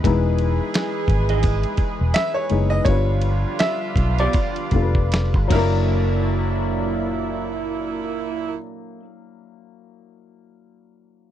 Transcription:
Already playing: B4
0.04 E1 E3 G#3 B3 D#4 E4 G#4 B4, kick, ride
0.38 ride
0.74 finger snap, snare, ride
1.08 G#1, kick, ride
1.29 D#4 G#4 B4 D#5, ride
1.43 kick, ride
1.63 ride
1.77 muted fingered electric bass stroke, kick, ride
2.01 E1
2.14 E5, finger snap, snare, ride
2.34 C#5
2.50 F#1 G#3 B3 D#4 E4 G#4, ride
2.70 D#5
2.85 G1 D3 F3 G3 B3 D4 F4 C#5, kick, ride
2.89 B4
3.21 ride
3.59 E5, finger snap, snare, ride
3.96 B1, kick, ride
4.18 B3 F4 G4 C#5 D5, ride
4.33 kick, ride
4.56 ride
4.71 F1 G3 B3 D4 F4 A4, kick, ride
4.82 B4
4.95 kick
5.12 finger snap, snare, ride
5.34 G1, kick
5.48 F#1 A#2 F#3 A#3 D4 E4, kick, crash
5.52 A#3 E4 A4 A#4 D5

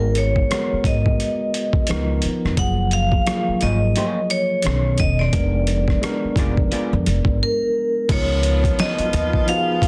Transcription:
Already playing: G#1 G#3 B3 F#4 A#4
0.15 C#5, closed hi-hat
0.36 kick
0.50 G#3 B3 F#4 A#4, cross-stick, closed hi-hat
0.73 muted upright bass stroke
0.84 G#1 D#5, kick, closed hi-hat
1.06 kick
1.20 closed hi-hat
1.54 closed hi-hat
1.73 kick
1.87 C#2 F3 B3, closed hi-hat
1.91 D#4 A#4, cross-stick
2.22 muted upright bass stroke, closed hi-hat
2.45 F2, cross-stick
2.57 F#1 F3 F#3 A#3 G#4 F#5, kick, closed hi-hat
2.91 F5, closed hi-hat
3.12 kick
3.26 F#3 A#3 F4 G#4, cross-stick, closed hi-hat
3.36 A#4
3.48 muted upright bass stroke
3.61 G#1 A#3 F4 G#4 C#5 D#5, closed hi-hat
3.96 A#3 F4 G#4 C#5, closed hi-hat
4.30 C#5, closed hi-hat
4.62 B1 D#3 B3, closed hi-hat
4.66 C#4 A4, cross-stick
4.98 E1 D#5, kick, closed hi-hat
5.19 D5, cross-stick
5.33 F1 G#3 B3 D4 A#4, kick, closed hi-hat
5.67 closed hi-hat
5.88 kick, cross-stick
6.02 G#3 B3 D4 A#4, cross-stick, closed hi-hat
6.25 muted upright bass stroke
6.36 F1 B3 F4 G#4 D5, kick, cross-stick, closed hi-hat
6.57 kick
6.72 B3 F4 G#4 D5, closed hi-hat
6.93 F2
7.06 F1, closed hi-hat
7.25 G#1, kick
7.43 A#4
8.09 C#2 F3 B3 D#4 F4 A#4 C#5, kick, closed hi-hat, crash
8.43 closed hi-hat
8.64 kick, closed hi-hat
8.79 D#5, snare, closed hi-hat
8.98 muted upright bass stroke, closed hi-hat
9.13 D#2, closed hi-hat
9.33 kick
9.47 F3 B3 D#4 F#4 F5, closed hi-hat
9.57 G#4
9.82 kick, closed hi-hat

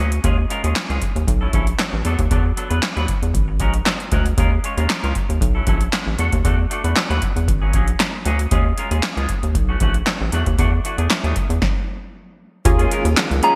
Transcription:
0.00 D2 C#4 G#4
0.12 muted clean electric guitar stroke, closed hi-hat
0.24 D#2 G#3 C#4 F4 G#4, kick, closed hi-hat
0.38 muted clean electric guitar stroke
0.50 G#3 C#4 F4 A#4, closed hi-hat
0.63 D#2 G#3 C#4 F4 G#4, closed hi-hat
0.76 snare, clap, closed hi-hat
0.89 C#2 G#3 C#4 F4 G#4, closed hi-hat
1.02 muted clean electric guitar stroke, kick, closed hi-hat
1.16 D#2, muted clean electric guitar stroke, closed hi-hat
1.28 B1, muted clean electric guitar stroke, kick, closed hi-hat
1.41 F#3 C#4 E4 A4
1.53 A#1 F#3 C#4 E4 A4, kick, closed hi-hat
1.67 muted clean electric guitar stroke, closed hi-hat
1.79 snare, clap, closed hi-hat
1.93 A1, muted clean electric guitar stroke
2.05 E2 F#3 B3 D4 A4, closed hi-hat
2.19 D#2, muted clean electric guitar stroke, kick, closed hi-hat
2.31 E2 F#3 B3 D4 A4, kick, closed hi-hat
2.45 muted clean electric guitar stroke
2.56 F#3 B3 D4 A4, closed hi-hat
2.70 E2 F#3 B3 D4 B4, closed hi-hat
2.82 muted clean electric guitar stroke, snare, clap, closed hi-hat
2.96 D#2 F#3 B3 D4 B4, closed hi-hat
3.08 muted clean electric guitar stroke, kick, closed hi-hat
3.22 E2, muted clean electric guitar stroke, closed hi-hat
3.34 G#1, kick, closed hi-hat
3.48 muted clean electric guitar stroke
3.60 A#1 G#3 C#4 F#4 A#4, kick, closed hi-hat
3.74 muted clean electric guitar stroke, closed hi-hat
3.86 muted clean electric guitar stroke, snare, clap, closed hi-hat
4.00 muted clean electric guitar stroke, closed hi-hat
4.12 D2 G#3 C#4 F#4 A#4, kick, closed hi-hat
4.26 muted clean electric guitar stroke, closed hi-hat
4.38 D#2 G#3 C#4 F4 A#4, kick, closed hi-hat
4.52 muted clean electric guitar stroke
4.64 G#3 C#4 F4 C#5, closed hi-hat
4.77 D#2 G#3 C#4 F4 A#4, closed hi-hat
4.90 muted clean electric guitar stroke, snare, clap, closed hi-hat
5.03 C#2 G#3 C#4 F4 A#4, closed hi-hat
5.15 muted clean electric guitar stroke, kick, closed hi-hat
5.29 D#2, muted clean electric guitar stroke, closed hi-hat
5.41 B1, muted clean electric guitar stroke, kick, closed hi-hat
5.55 F#3 C#4 E4 A4
5.67 A#1 F#3 C#4 E4 A4, kick, closed hi-hat
5.81 muted clean electric guitar stroke, closed hi-hat
5.93 snare, clap, closed hi-hat
6.07 A1, muted clean electric guitar stroke
6.19 E2 A3 D4 F#4 A4, closed hi-hat
6.32 D#2, muted clean electric guitar stroke, kick, closed hi-hat
6.44 E2 A3 D4 F#4 A4, kick, closed hi-hat
6.58 muted clean electric guitar stroke
6.70 A3 D4 F#4 A4, closed hi-hat
6.84 E2 A3 D4 F#4 B4, closed hi-hat
6.96 muted clean electric guitar stroke, snare, clap, closed hi-hat
7.10 D#2 A3 D4 F#4 B4, closed hi-hat
7.22 muted clean electric guitar stroke, kick, closed hi-hat
7.36 E2, muted clean electric guitar stroke, closed hi-hat
7.48 G#1, muted clean electric guitar stroke, kick, closed hi-hat
7.62 F#3 A#3 C#4 G#4
7.73 A#1 F#3 A#3 C#4 G#4, kick, closed hi-hat
7.87 muted clean electric guitar stroke, closed hi-hat
8.00 muted clean electric guitar stroke, snare, clap, closed hi-hat
8.13 muted clean electric guitar stroke
8.25 D2 F#3 A#3 C#4 G#4, closed hi-hat
8.39 muted clean electric guitar stroke, closed hi-hat
8.51 D#2 G#3 C#4 F4 G#4, kick, closed hi-hat
8.65 muted clean electric guitar stroke
8.78 G#3 C#4 F4 A#4, closed hi-hat
8.91 D#2 G#3 C#4 F4 G#4, closed hi-hat
9.03 muted clean electric guitar stroke, snare, clap, closed hi-hat
9.17 C#2 G#3 C#4 F4 G#4, closed hi-hat
9.29 muted clean electric guitar stroke, kick, closed hi-hat
9.43 D#2, muted clean electric guitar stroke, closed hi-hat
9.55 B1, muted clean electric guitar stroke, kick, closed hi-hat
9.69 E3 A3 C#4 F#4
9.80 A#1 E3 A3 C#4 F#4, kick, closed hi-hat
9.94 muted clean electric guitar stroke, closed hi-hat
10.06 snare, clap, closed hi-hat
10.21 A1, muted clean electric guitar stroke
10.32 E2 E3 A3 D4 F#4, closed hi-hat
10.46 D#2, muted clean electric guitar stroke, kick, closed hi-hat
10.58 E2 E3 A3 D4 F#4, kick, closed hi-hat
10.72 muted clean electric guitar stroke
10.84 E3 A3 D4 F#4, closed hi-hat
10.98 E2 E3 A3 D4 G#4, closed hi-hat
11.10 snare, clap, closed hi-hat
11.24 D#2 E3 A3 D4 G#4, closed hi-hat
11.36 muted clean electric guitar stroke, kick, closed hi-hat
11.50 E2, muted clean electric guitar stroke, closed hi-hat
11.62 kick, snare
12.65 D#2 D#3 A#3 C#4 F4 G#4, muted clean electric guitar stroke, kick, closed hi-hat
12.79 G#3 C#4 F4 G#4, closed hi-hat
12.91 G#3 C#4 F4 A#4, closed hi-hat
13.05 D#2, muted clean electric guitar stroke, closed hi-hat
13.17 snare, clap, closed hi-hat
13.31 C#2, muted clean electric guitar stroke, closed hi-hat
13.43 G#3 A#3 C#4 F4 G#4 A#5, closed hi-hat

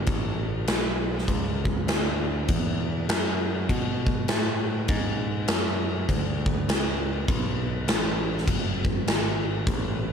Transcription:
0.07 A1, kick, crash
0.68 B1, snare, crash
1.18 snare
1.28 C#2, kick, crash
1.65 kick
1.87 D2, snare, crash
2.48 E2, kick, crash
3.09 F#2, snare, crash
3.69 B2, kick, crash
4.07 kick
4.28 A2, snare, crash
4.88 G#2, kick, crash
5.48 F#2, snare, crash
6.09 D2, kick, crash
6.46 kick
6.69 C#2, snare, crash
7.28 B1, kick, crash
7.88 A1, snare, crash
8.38 snare
8.48 F#1, kick, crash
8.85 kick
9.07 G#1, snare, crash
9.67 A1, kick, crash

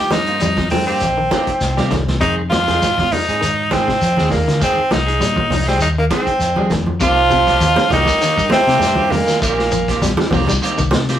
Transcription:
Already playing: G4
0.11 G2 F3 D#4, snare, closed hi-hat, high conga, shekere
0.26 A#3 C4, closed hi-hat
0.40 F2 G3, closed hi-hat, high conga, shekere
0.56 kick, snare, high conga
0.70 G2 F3 C4, open hi-hat, low conga, shekere
0.87 A#3 C4 G4, muted clean electric guitar stroke
1.00 A#1, closed hi-hat, shekere
1.18 D#3
1.31 D#3 A#3 C4 G4, kick, snare, closed hi-hat, high conga, shekere
1.47 kick, closed hi-hat
1.61 C2, snare, closed hi-hat, shekere
1.77 C3 G3 A#3 C4 G4, snare, high conga
1.91 C2 D#3, kick, snare, closed hi-hat, low conga, shekere
2.08 snare, high conga
2.21 F2 C3 D#3 G#3 C4 D#4 G#4, kick, closed hi-hat, shekere
2.50 F4, muted clean electric guitar stroke, snare, closed hi-hat, high conga, shekere
2.68 G#3 C4 G#4, snare, closed hi-hat, low conga
2.82 G#2, snare, closed hi-hat, high conga, shekere
2.98 kick, snare, high conga
3.12 D#4, open hi-hat, low conga, shekere
3.28 G#2 G#3 C4 G#4, closed hi-hat
3.41 D#3, closed hi-hat, shekere
3.71 D#3 G#3 C4 G#4, kick, snare, closed hi-hat, high conga, shekere
3.88 C3, kick, snare
4.01 F3, closed hi-hat, shekere
4.17 D#2 G#3 C4 G#4, snare, high conga
4.30 A#3, kick, snare, open hi-hat, low conga, shekere
4.47 D3 D#3, snare, closed hi-hat
4.60 D#3 G#3 C4 G#4, kick, snare, closed hi-hat, shekere
4.77 muted fingered electric bass stroke
4.91 C2 F3 D#4, snare, closed hi-hat, high conga, shekere
5.06 G#3 G#4, closed hi-hat
5.20 A#2 G3, closed hi-hat, high conga, shekere
5.36 kick, high conga
5.50 C2 F3, open hi-hat, low conga, shekere
5.66 G3 G#3 C4 G#4, snare
5.80 D#2 D#4, closed hi-hat, shekere
5.98 D#3 A#3
6.10 D#3 G#3 C4 G#4, kick, snare, closed hi-hat, high conga, shekere
6.27 kick, closed hi-hat
6.39 F2, closed hi-hat, shekere
6.56 F3 G3 G#3 C4 G#4, high conga
6.70 F2 D#3, kick, snare, closed hi-hat, high conga, low conga, shekere
6.86 high conga
7.00 C2 C3 D#3 F3 A#3 C4 F4 G4, kick, closed hi-hat, shekere
7.30 C3, kick, closed hi-hat, low conga, shekere
7.47 A#3 C4 G4, kick, snare, closed hi-hat, shekere
7.60 D#2, closed hi-hat, high conga, shekere
7.76 snare, high conga
7.90 C2 D#3 A#3 C4 D#4 G4, kick, closed hi-hat, high conga, low conga, shekere
8.05 kick, snare, closed hi-hat, high conga, shekere
8.21 D#3 A#3 C4 G4, muted fingered electric bass stroke, closed hi-hat, shekere
8.38 G2, kick, shekere
8.50 C3 C4, snare, closed hi-hat, high conga
8.67 C3 A#3 C4 G4, snare, closed hi-hat, shekere
8.79 G2, snare, closed hi-hat, low conga, shekere
8.95 G2 C4 G4, high conga
9.00 A#3
9.10 A#2 D#3 A#3, open hi-hat, low conga, shekere
9.27 D#3, snare, closed hi-hat, shekere
9.41 A#1 A#2 D#3 A#3 C4 G4, kick, closed hi-hat, shekere
9.59 snare
9.71 F3, kick, closed hi-hat, shekere
9.88 A#3 C4 G4, kick, snare, closed hi-hat, shekere
10.01 A#1 G3, snare, closed hi-hat, high conga, shekere
10.17 muted fingered electric bass stroke, snare, high conga
10.31 C2 D#3 F3 A#3 C4, kick, open hi-hat, high conga, low conga, shekere
10.35 G4
10.47 G3, kick, high conga, shekere
10.62 D#3 A#3 C4 G4, closed hi-hat, shekere
10.78 C2 D#3, kick, shekere
10.91 C3, snare, closed hi-hat, high conga
11.09 A#3 C4 G4, snare, closed hi-hat, shekere

